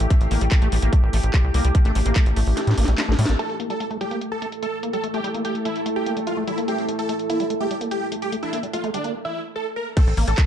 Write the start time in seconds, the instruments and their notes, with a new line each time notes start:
Already playing: ambient pad A3 E4 G4 E5 A5
0.00 analog synth bass A1, closed hi-hat
0.10 acid bass A3, wobble bass C4, kick, closed hi-hat
0.21 analog synth bass A1, wobble bass C4, closed hi-hat
0.29 analog synth bass A1, acid bass A#3, ambient pad D6, open hi-hat
0.41 analog synth bass A1, acid bass G3, closed hi-hat
0.52 acid bass A3, kick, clap, closed hi-hat
0.62 analog synth bass A1, acid bass A3, closed hi-hat
0.72 analog synth bass A1, acid bass G3, open hi-hat
0.82 analog synth bass A1, acid bass A#3, closed hi-hat
0.93 acid bass A3, kick, closed hi-hat
1.03 analog synth bass A1
1.13 analog synth bass A1, acid bass A3, open hi-hat
1.23 analog synth bass A1, closed hi-hat
1.34 acid bass A3, kick, clap, closed hi-hat
1.44 analog synth bass C2
1.54 analog synth bass C2, acid bass A#3, open hi-hat
1.65 analog synth bass C2, acid bass G3, closed hi-hat
1.75 acid bass A3, kick, closed hi-hat
1.85 analog synth bass A1, acid bass A3, wobble bass D4, closed hi-hat
1.95 analog synth bass A1, acid bass G3, open hi-hat
2.06 analog synth bass A1, acid bass A#3, closed hi-hat
2.16 acid bass A3, kick, clap, closed hi-hat
2.26 analog synth bass A1, closed hi-hat
2.36 analog synth bass A1, acid bass A3, open hi-hat
2.47 analog synth bass A1, open hi-hat
2.57 acid bass A3, snare, closed hi-hat
2.67 analog synth bass A2, snare, closed hi-hat
2.78 analog synth bass A1, acid bass A#3, open hi-hat
2.84 analog synth bass A#1, acid bass G3, snare, closed hi-hat
2.98 acid bass A3, snare, clap, closed hi-hat
3.08 analog synth bass A1, acid bass A3, snare
3.19 analog synth bass A2, acid bass G3, wobble bass A3, open hi-hat
3.26 analog synth bass A1, acid bass A#3, snare, closed hi-hat
3.39 acid bass A3, ambient pad A3 A4, supersaw synth A4, closed hi-hat
3.49 closed hi-hat
3.54 ambient pad E4
3.60 acid bass A#3, closed hi-hat
3.70 acid bass G3, supersaw synth A4, closed hi-hat
3.80 acid bass A3, closed hi-hat
3.91 acid bass A3, ambient pad E5, closed hi-hat
4.01 acid bass G3, supersaw synth G4, closed hi-hat
4.11 acid bass A#3, closed hi-hat
4.21 acid bass A3, closed hi-hat
4.32 supersaw synth A4
4.36 ambient pad A5
4.42 acid bass A3, closed hi-hat
4.52 closed hi-hat
4.62 acid bass A3, supersaw synth A4, closed hi-hat
4.83 acid bass A#3, closed hi-hat
4.93 acid bass G3, supersaw synth A4, closed hi-hat
5.04 acid bass A3, closed hi-hat
5.14 acid bass A3, supersaw synth G4, closed hi-hat
5.24 acid bass G3, closed hi-hat
5.34 acid bass A#3, closed hi-hat
5.45 acid bass A3, supersaw synth G4, closed hi-hat
5.55 closed hi-hat
5.65 acid bass A3, supersaw synth E4, closed hi-hat
5.76 closed hi-hat
5.86 acid bass A3, closed hi-hat
5.96 supersaw synth G4
6.06 acid bass A#3, closed hi-hat
6.17 acid bass G3, closed hi-hat
6.27 acid bass A3, supersaw synth F4, closed hi-hat
6.37 acid bass A3
6.47 acid bass G3, supersaw synth E4, closed hi-hat
6.58 acid bass A#3, closed hi-hat
6.68 acid bass A3, wobble bass C4, supersaw synth G4, closed hi-hat
6.78 wobble bass C4, closed hi-hat
6.89 acid bass A3, closed hi-hat
6.99 supersaw synth A4, closed hi-hat
7.09 acid bass A3, closed hi-hat
7.19 closed hi-hat
7.30 acid bass A#3, supersaw synth E4, closed hi-hat
7.40 acid bass G3, closed hi-hat
7.50 acid bass A3, closed hi-hat
7.60 acid bass A3, supersaw synth G4
7.71 acid bass G3, closed hi-hat
7.81 acid bass A#3, closed hi-hat
7.91 acid bass A3, supersaw synth G4, closed hi-hat
8.12 acid bass A3, closed hi-hat
8.22 supersaw synth G4, closed hi-hat
8.32 acid bass A3, closed hi-hat
8.43 wobble bass D4, supersaw synth E4, closed hi-hat
8.53 acid bass A#3, closed hi-hat
8.63 acid bass G3, closed hi-hat
8.73 acid bass A3, supersaw synth F4, closed hi-hat
8.84 acid bass A3, closed hi-hat
8.94 acid bass G3, supersaw synth D4, closed hi-hat
9.04 acid bass A#3, closed hi-hat
9.25 supersaw synth E4
9.56 supersaw synth A4
9.76 supersaw synth A#4
9.97 ambient pad A3 A4, acid bass A3, wobble bass C4, supersaw synth A4, kick, closed hi-hat, crash
10.07 analog synth bass A1, wobble bass C4
10.17 analog synth bass A1, acid bass A#3, open hi-hat
10.28 analog synth bass A1, acid bass G3, supersaw synth A4, closed hi-hat
10.38 acid bass A3, kick, clap, closed hi-hat